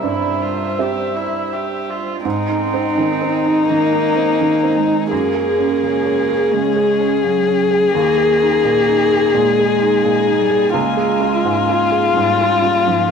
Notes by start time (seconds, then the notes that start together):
Already playing: C2 G3 G4 C5 E5
0.03 G2 E4
0.43 F4
0.79 C4 G4 E5
1.16 E4
1.53 G4
1.90 F4
2.24 G#2 G#3 C4 D#4 G#4
2.48 D#4
2.74 C4
2.98 D#3
3.21 C4
3.46 D#4
3.68 D#3 A#3
3.92 D#4
4.16 C4
4.41 D#3
4.63 C4
4.75 G#3
4.88 D#4
5.11 F#2 A#3 C#4 G#4
5.35 G#4
5.58 C#4
5.83 C#3
6.05 C#4
6.29 G#4
6.52 C#3 G#3
6.76 G#4
7.00 C#4
7.23 C#3 F#3
7.47 C#4
7.71 G#4
7.94 D#2 A#3 D#4 G#5
8.18 G#4
8.42 D#4
8.65 A#2
8.88 D#4
9.12 G#4
9.34 A#2 G#3
9.59 G#4
9.81 D#4
10.05 A#2
10.27 D#4
10.40 G3
10.51 G#4
10.73 C#2 G#3 F4
10.97 G#4
11.20 F4
11.44 G#2
11.69 F4
11.92 G#4
12.14 G#2 G3
12.40 F4
12.63 F4
12.85 G#2 F3